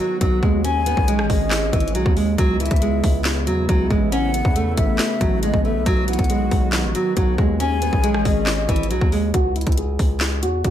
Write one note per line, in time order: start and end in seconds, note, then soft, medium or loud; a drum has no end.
0.00 0.63 D#3 medium
0.00 0.17 F#3 medium
0.00 0.63 F#3 medium
0.00 0.60 B3 medium
0.00 0.63 F#4 medium
0.21 0.42 B1 loud
0.21 0.38 F#3 medium
0.21 kick medium
0.21 closed hi-hat medium
0.43 0.95 D#2 loud
0.43 0.60 G#3 medium
0.43 kick loud
0.64 2.37 D#3 medium
0.64 4.09 G#3 medium
0.64 0.82 C#4 loud
0.64 2.37 C#4 medium
0.64 2.37 G#4 medium
0.64 1.26 G#5 loud
0.64 closed hi-hat medium
0.86 1.04 B3 medium
0.86 closed hi-hat medium
0.97 1.20 B1 loud
0.97 kick medium
1.08 1.69 G#3 medium
1.08 closed hi-hat medium
1.19 1.29 A1 loud
1.19 cross-stick loud
1.29 1.72 G#1 loud
1.29 1.91 D#5 medium
1.29 kick loud
1.29 open hi-hat medium
1.51 snare loud
1.51 clap medium
1.51 closed hi-hat medium
1.73 1.96 G#1 loud
1.73 1.90 E3 medium
1.73 kick loud
1.73 closed hi-hat medium
1.80 closed hi-hat medium
1.88 closed hi-hat medium
1.95 2.05 B1 loud
1.95 2.12 F#3 medium
1.95 closed hi-hat medium
2.06 2.37 D#2 loud
2.06 kick loud
2.17 2.34 G#3 medium
2.17 open hi-hat medium
2.38 2.70 C#2 loud
2.38 5.83 C#3 medium
2.38 2.56 F#3 loud
2.38 7.56 B3 medium
2.38 5.83 E4 medium
2.38 kick loud
2.38 closed hi-hat medium
2.60 2.77 E3 medium
2.60 3.21 E5 medium
2.60 closed hi-hat medium
2.66 closed hi-hat medium
2.71 3.02 C#2 loud
2.71 kick medium
2.71 closed hi-hat medium
2.76 closed hi-hat medium
2.82 3.43 G#3 medium
2.82 closed hi-hat medium
3.04 3.49 C#2 loud
3.04 kick loud
3.04 open hi-hat medium
3.25 snare loud
3.25 clap medium
3.25 closed hi-hat medium
3.47 3.68 E2 loud
3.47 3.64 F#3 medium
3.47 closed hi-hat medium
3.69 3.90 C#2 loud
3.69 3.86 F#3 medium
3.69 kick loud
3.69 closed hi-hat medium
3.90 4.43 A1 loud
3.90 4.08 G#3 medium
3.90 kick loud
4.12 5.85 A3 medium
4.12 4.29 C#4 loud
4.12 4.73 F#5 loud
4.12 closed hi-hat medium
4.34 4.51 B3 medium
4.34 closed hi-hat medium
4.45 4.76 E2 loud
4.45 kick medium
4.56 5.17 A3 medium
4.56 closed hi-hat medium
4.77 4.98 A1 loud
4.77 5.39 E5 loud
4.77 kick loud
4.77 closed hi-hat medium
4.99 snare loud
4.99 clap medium
4.99 closed hi-hat medium
5.21 5.52 A1 loud
5.21 5.38 F#3 medium
5.21 kick loud
5.21 closed hi-hat medium
5.43 5.60 G#3 medium
5.43 5.63 D#5 medium
5.43 closed hi-hat medium
5.54 5.77 A1 loud
5.54 kick loud
5.64 5.82 A3 medium
5.64 5.85 E5 medium
5.75 5.86 B1 loud
5.86 6.18 B1 loud
5.86 9.31 D#3 medium
5.86 6.04 F#3 loud
5.86 7.58 F#3 medium
5.86 7.58 F#4 loud
5.86 kick loud
5.86 closed hi-hat medium
6.08 6.25 E3 medium
6.08 6.69 F#5 medium
6.08 closed hi-hat medium
6.13 closed hi-hat medium
6.19 6.50 B1 loud
6.19 kick loud
6.19 closed hi-hat medium
6.24 closed hi-hat medium
6.30 6.91 G#3 medium
6.30 closed hi-hat medium
6.51 6.86 B1 loud
6.51 kick loud
6.51 open hi-hat medium
6.73 snare loud
6.73 clap loud
6.73 closed hi-hat medium
6.84 6.94 A1 loud
6.95 7.12 F#3 medium
6.95 closed hi-hat medium
7.17 7.38 B1 loud
7.17 7.34 F#3 medium
7.17 kick medium
7.17 closed hi-hat medium
7.38 7.91 D#2 loud
7.38 7.56 G#3 medium
7.38 kick loud
7.60 9.32 G#3 medium
7.60 7.77 C#4 loud
7.60 9.32 C#4 medium
7.60 9.32 G#4 medium
7.60 8.22 G#5 loud
7.60 closed hi-hat medium
7.82 7.99 B3 medium
7.82 closed hi-hat medium
7.93 8.16 B1 loud
7.93 kick medium
8.04 8.65 G#3 medium
8.04 closed hi-hat medium
8.14 8.25 A1 loud
8.14 cross-stick loud
8.25 8.67 G#1 loud
8.25 8.86 D#5 medium
8.25 kick loud
8.25 open hi-hat medium
8.47 snare loud
8.47 clap loud
8.47 closed hi-hat medium
8.69 8.92 G#1 loud
8.69 8.86 E3 medium
8.69 kick loud
8.69 closed hi-hat medium
8.76 closed hi-hat medium
8.83 closed hi-hat medium
8.91 9.01 B1 loud
8.91 9.08 F#3 medium
8.91 closed hi-hat medium
9.01 9.33 D#2 loud
9.01 kick loud
9.12 9.30 G#3 medium
9.12 open hi-hat medium
9.34 9.65 C#2 loud
9.34 9.51 F#4 loud
9.34 kick loud
9.34 closed hi-hat medium
9.56 9.73 E4 medium
9.56 closed hi-hat medium
9.61 closed hi-hat medium
9.67 9.98 C#2 loud
9.67 kick medium
9.67 closed hi-hat medium
9.72 closed hi-hat medium
9.78 10.39 G#4 medium
9.78 closed hi-hat medium
9.99 10.44 C#2 loud
9.99 kick medium
9.99 open hi-hat medium
10.20 snare loud
10.20 clap medium
10.20 closed hi-hat medium
10.43 10.63 E2 loud
10.43 10.60 F#4 medium
10.43 closed hi-hat medium
10.64 10.70 C#2 loud
10.64 10.70 F#4 medium
10.64 kick medium
10.64 closed hi-hat medium